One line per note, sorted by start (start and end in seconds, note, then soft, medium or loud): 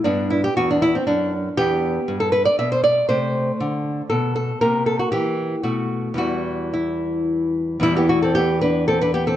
0.04 0.46 G2 medium
0.04 1.53 B3 soft
0.04 0.29 D4 medium
0.30 0.43 E4 medium
0.44 0.56 G4 medium
0.57 0.97 E2 medium
0.57 0.69 F#4 medium
0.71 0.82 D4 medium
0.82 0.94 E4 medium
0.95 1.06 C4 medium
1.07 1.48 F#2 medium
1.07 1.31 D4 medium
1.57 1.98 E2 medium
1.57 3.05 B3 soft
1.57 2.18 G4 medium
2.08 2.48 G2 medium
2.20 2.32 A4 medium
2.32 2.45 B4 medium
2.45 2.58 D5 medium
2.59 2.99 B2 medium
2.59 2.71 E5 medium
2.72 2.83 C5 medium
2.84 3.08 D5 medium
3.09 3.50 C3 medium
3.09 4.57 A3 soft
3.09 4.06 C5 medium
3.60 4.01 D3 medium
4.10 4.51 B2 medium
4.10 4.34 A4 medium
4.36 4.60 A4 medium
4.61 5.02 C3 medium
4.61 5.61 A#3 medium
4.61 4.85 A#4 medium
4.86 4.99 A4 medium
4.99 5.11 F#4 medium
5.12 5.54 E3 medium
5.12 5.62 G4 medium
5.63 6.08 B2 medium
5.63 6.15 A3 soft
5.63 6.16 F#4 medium
6.14 7.77 E2 medium
6.14 7.78 E3 soft
6.14 7.79 G3 soft
6.14 6.71 F#4 medium
6.74 7.53 E4 medium
7.80 9.35 E2 medium
7.80 9.35 E3 medium
7.80 7.96 E4 loud
7.84 7.96 G3 medium
7.97 8.09 B3 medium
7.97 8.09 G4 medium
8.09 8.22 A3 medium
8.09 8.22 F#4 medium
8.22 8.35 C4 medium
8.22 8.34 A4 medium
8.35 8.60 B3 medium
8.35 8.60 G4 medium
8.61 8.87 D4 medium
8.61 8.87 B4 medium
8.88 9.01 C4 medium
8.88 9.01 A4 medium
9.01 9.14 D4 medium
9.01 9.14 B4 medium
9.14 9.27 B3 medium
9.14 9.27 G4 medium
9.27 9.37 C4 medium
9.27 9.37 A4 medium